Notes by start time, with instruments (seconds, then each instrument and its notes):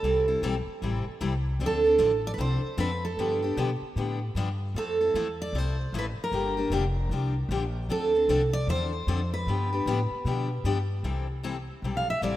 Already playing: steel-string acoustic guitar A4
0.03 upright bass C2, steel-string acoustic guitar C3 E3 G3 C4 E4 A4
0.28 steel-string acoustic guitar G3 C4 E4 A4
0.42 upright bass B1, steel-string acoustic guitar C3 E3 G3 C4 E4 A4
0.67 muted upright bass stroke
0.82 upright bass A1, steel-string acoustic guitar C3 E3 G3 C4 E4 A4
1.06 muted upright bass stroke
1.21 upright bass C2, steel-string acoustic guitar C3 E3 G3 C4 E4 A4
1.59 upright bass D2, steel-string acoustic guitar D3 F3 C4 D4 A4
1.66 steel-string acoustic guitar A4
1.84 steel-string acoustic guitar C4 D4 A4
1.98 upright bass A1, steel-string acoustic guitar D3 F3 C4 D4 A4
2.27 steel-string acoustic guitar D5
2.34 steel-string acoustic guitar B4
2.38 upright bass C2, steel-string acoustic guitar D3 F3 C4 D4 A4 C5
2.64 muted upright bass stroke
2.77 upright bass F2, steel-string acoustic guitar D3 F3 C4 D4 A4 B4
3.05 steel-string acoustic guitar A4
3.17 upright bass G2, steel-string acoustic guitar D3 F3 B3 D4 G4
3.42 steel-string acoustic guitar B3 D4 G4
3.57 upright bass B2, steel-string acoustic guitar D3 F3 B3 D4 G4
3.81 muted upright bass stroke
3.96 upright bass A2, steel-string acoustic guitar D3 F3 B3 D4 G4
4.35 upright bass G2, steel-string acoustic guitar D3 F3 B3 D4 G4
4.74 upright bass F2, steel-string acoustic guitar F3 A3 C4 E4 A4
5.01 steel-string acoustic guitar C4 E4 A4
5.14 upright bass E2, steel-string acoustic guitar F3 A3 C4 E4 A4
5.42 steel-string acoustic guitar D5
5.53 upright bass C2, steel-string acoustic guitar F3 A3 C4 E4 A4
5.58 steel-string acoustic guitar C5
5.93 upright bass A1, steel-string acoustic guitar F3 A3 C4 E4 A4
5.99 steel-string acoustic guitar B4
6.18 muted upright bass stroke
6.24 steel-string acoustic guitar A#4
6.32 upright bass G1, steel-string acoustic guitar D3 F3 A#3 D4 G4
6.57 steel-string acoustic guitar A#3 D4 G4
6.70 upright bass F1, steel-string acoustic guitar D3 F3 A#3 D4 G4
7.09 upright bass C2, steel-string acoustic guitar D3 F3 A#3 D4 G4
7.49 upright bass A#1, steel-string acoustic guitar D3 F3 A#3 D4 G4
7.89 upright bass D2, steel-string acoustic guitar D3 F3 C4 D4 A4
8.15 steel-string acoustic guitar C4 D4 A4
8.28 upright bass C2, steel-string acoustic guitar D3 F3 C4 D4 A4
8.53 steel-string acoustic guitar D5
8.67 upright bass E2, steel-string acoustic guitar D3 F3 C4 D4 A4 C5
9.07 upright bass F2, steel-string acoustic guitar D3 F3 C4 D4 A4
9.34 steel-string acoustic guitar B4
9.47 upright bass G2, steel-string acoustic guitar D3 F3 B3 D4 G4
9.73 steel-string acoustic guitar B3 D4 G4
9.86 upright bass A2, steel-string acoustic guitar D3 F3 B3 D4 G4
10.11 muted upright bass stroke
10.25 upright bass B2, steel-string acoustic guitar D3 F3 B3 D4 G4
10.64 upright bass G2, steel-string acoustic guitar D3 F3 B3 D4 G4
11.03 upright bass C2, steel-string acoustic guitar C3 E3 G3 C4 E4 A4
11.43 steel-string acoustic guitar C3 E3 G3 C4 E4 A4
11.82 upright bass B1, steel-string acoustic guitar C3 E3 G3 C4 E4 A4
11.97 steel-string acoustic guitar F5
12.10 steel-string acoustic guitar E5
12.22 upright bass A1, steel-string acoustic guitar C3 E3 G3 C4 E4 A4 D5